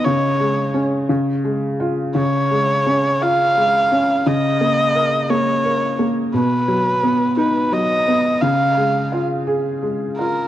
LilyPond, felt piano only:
\new Staff \with { instrumentName = "Felt piano" } { \time 6/8 \key cis \mixolydian \tempo 4. = 57 cis8 gis8 cis'8 cis8 gis8 eis'8 | cis8 gis8 cis'8 eis'8 gis8 cis'8 | cis8 ais8 ais'8 ais8 ais'8 ais8 | b,8 fis8 b8 dis'8 fis8 b8 |
cis8 gis8 eis'8 gis'8 gis8 eis'8 | }